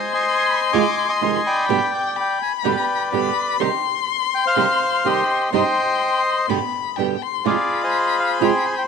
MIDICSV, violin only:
0, 0, Header, 1, 2, 480
1, 0, Start_track
1, 0, Key_signature, -3, "minor"
1, 0, Tempo, 480769
1, 1690, Time_signature, 4, 2, 24, 8
1, 8861, End_track
2, 0, Start_track
2, 0, Title_t, "Violin"
2, 0, Program_c, 0, 40
2, 0, Note_on_c, 0, 84, 96
2, 1662, Note_on_c, 0, 79, 85
2, 1677, Note_off_c, 0, 84, 0
2, 2156, Note_on_c, 0, 83, 81
2, 2171, Note_off_c, 0, 79, 0
2, 3116, Note_off_c, 0, 83, 0
2, 3123, Note_on_c, 0, 83, 93
2, 3590, Note_on_c, 0, 84, 104
2, 3605, Note_off_c, 0, 83, 0
2, 5509, Note_off_c, 0, 84, 0
2, 5518, Note_on_c, 0, 84, 88
2, 6481, Note_on_c, 0, 83, 77
2, 6495, Note_off_c, 0, 84, 0
2, 6950, Note_on_c, 0, 79, 69
2, 6965, Note_off_c, 0, 83, 0
2, 7207, Note_on_c, 0, 84, 78
2, 7222, Note_off_c, 0, 79, 0
2, 7441, Note_on_c, 0, 83, 85
2, 7456, Note_off_c, 0, 84, 0
2, 8861, Note_off_c, 0, 83, 0
2, 8861, End_track
0, 0, End_of_file